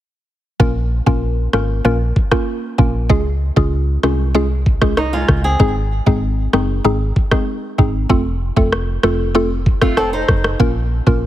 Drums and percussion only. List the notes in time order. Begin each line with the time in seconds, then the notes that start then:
0.60 kick
1.07 kick
1.53 cross-stick
2.16 kick
2.32 kick, cross-stick
2.79 kick
3.10 kick
3.57 kick
4.03 cross-stick
4.66 kick
4.82 kick, cross-stick
4.97 cross-stick
5.28 kick, cross-stick
5.60 kick
6.07 kick
6.53 cross-stick
7.16 kick
7.31 kick, cross-stick
7.79 kick
8.10 kick
8.57 kick
8.72 cross-stick
9.03 cross-stick
9.66 kick
9.81 kick, cross-stick
9.97 cross-stick
10.28 kick, cross-stick
10.44 cross-stick
10.60 kick
11.07 kick